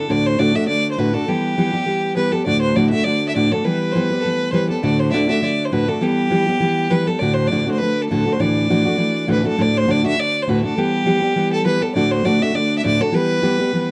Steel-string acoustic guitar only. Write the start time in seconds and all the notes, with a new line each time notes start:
0.09 D2 A2 D3 A3 D4 F#4
0.39 D2 A2 D3 A3 D4 F#4
0.54 D3 A3 D4 F#4
0.68 D3 A3 D4 F#4
0.98 D2 A2 D3 A3 D4 F#4
1.13 D3 A3 D4 F#4
1.28 E3 G3 B3 G4
1.58 E3 G3 B3 G4
1.73 G3 B3 G4
1.86 E3 G3 B3 G4
2.16 E3 G3 B3 G4
2.32 G3 B3 G4
2.46 D2 A2 D3 A3 D4 F#4
2.76 D2 A2 D3 A3 D4 F#4
2.92 D3 A3 D4 F#4
3.05 D3 A3 D4 F#4
3.36 D2 A2 D3 A3 D4 F#4
3.52 D3 A3 D4 F#4
3.64 E3 G3 B3 G4
3.95 E3 G3 B3 G4
4.11 G3 B3 G4
4.25 E3 G3 B3 G4
4.52 E3 G3 B3 G4
4.69 G3 B3 G4
4.83 D2 A2 D3 A3 D4 F#4
5.13 D2 A2 D3 A3 D4 F#4
5.28 D3 A3 D4 F#4
5.42 D3 A3 D4 F#4
5.72 D2 A2 D3 A3 D4 F#4
5.87 D3 A3 D4 F#4
6.01 E3 G3 B3 G4
6.30 E3 G3 B3 G4
6.47 G3 B3 G4
6.60 E3 G3 B3 G4
6.91 E3 G3 B3 G4
7.06 G3 B3 G4
7.21 D2 A2 D3 A3 D4 F#4
7.51 D2 A2 D3 A3 D4 F#4
7.67 D3 A3 D4 F#4
7.82 D3 A3 D4 F#4
8.11 D2 A2 D3 A3 D4 F#4
8.26 D3 A3 D4 F#4
8.39 D2 A2 E3 A3 D4 F#4
8.69 D2 A2 E3 A3 D4 F#4
8.85 E3 A3 D4 F#4
8.98 E3 A3 D4 F#4
9.27 D2 A2 E3 A3 D4 F#4
9.44 E3 A3 D4 F#4
9.57 D2 A2 D3 A3 D4 F#4
9.88 D2 A2 D3 A3 D4 F#4
10.04 D3 A3 D4 F#4
10.17 D3 A3
10.48 D2 A2 D3 A3 D4 F#4
10.63 D3 A3 D4 F#4
10.77 E3 G3 B3 G4
11.05 E3 G3 B3 G4
11.22 G3 B3 G4
11.36 E3 G3 B3 G4
11.65 E3 G3 B3 G4
11.81 G3 B3 G4
11.95 D2 A2 D3 A3 D4 F#4
12.24 D2 A2 D3 A3 D4 F#4
12.41 D3 A3 D4 F#4
12.53 D3 A3 D4 F#4
12.84 D2 A2 D3 A3 D4 F#4
13.00 D3 A3 D4 F#4
13.12 E3 G3 B3 G4
13.42 E3 G3 B3 G4
13.59 G3 B3 G4
13.73 E3 G3 B3 G4